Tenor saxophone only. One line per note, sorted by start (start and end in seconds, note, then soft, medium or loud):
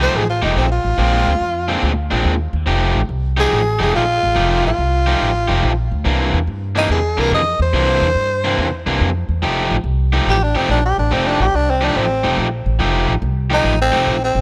0.02 0.18 C5 medium
0.16 0.29 G#4 medium
0.30 0.42 F4 medium
0.44 0.57 D#4 medium
0.58 0.70 C4 medium
0.72 1.94 F4 medium
3.40 3.80 G#4 medium
3.82 3.95 G#4 medium
3.95 4.63 F4 medium
4.67 5.88 F4 medium
6.78 6.90 D#4 medium
6.91 7.21 G#4 medium
7.20 7.32 A#4 medium
7.34 7.60 D#5 medium
7.62 8.84 C5 medium
10.30 10.45 G4 medium
10.43 10.58 D4 medium
10.57 10.70 C4 medium
10.71 10.84 D4 medium
10.85 10.98 G4 medium
10.99 11.15 D4 medium
11.13 11.28 C4 medium
11.27 11.40 D4 medium
11.41 11.57 G4 medium
11.55 11.72 D4 medium
11.70 11.86 C4 medium
11.85 11.99 D4 medium
11.97 12.37 C4 medium
13.53 13.79 D#4 medium
13.81 14.21 C4 medium
14.24 14.41 C4 medium